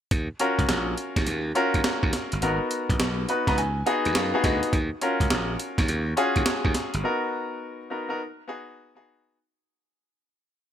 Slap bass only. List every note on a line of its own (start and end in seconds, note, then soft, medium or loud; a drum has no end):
0.12 0.28 D#2 loud
0.59 0.67 C#2 medium
0.69 0.94 A#1 medium
1.17 1.25 D#2 medium
1.27 1.51 D#2 medium
1.75 1.83 D#2 medium
1.85 muted slap bass stroke soft
2.03 2.12 D#2 medium
2.33 2.41 G1 medium
2.42 2.58 G#1 loud
2.90 2.98 A#1 medium
3.00 3.25 B1 medium
3.48 3.56 C#2 medium
3.58 3.82 C#2 loud
4.06 4.14 D#2 medium
4.16 4.32 F#2 medium
4.44 4.60 D2 medium
4.73 4.89 D#2 loud
5.21 5.29 C#2 medium
5.31 5.55 A#1 medium
5.78 5.87 D#2 medium
5.89 6.13 D#2 loud
6.36 6.45 D#2 medium
6.65 6.73 D#2 medium
6.94 7.02 G1 medium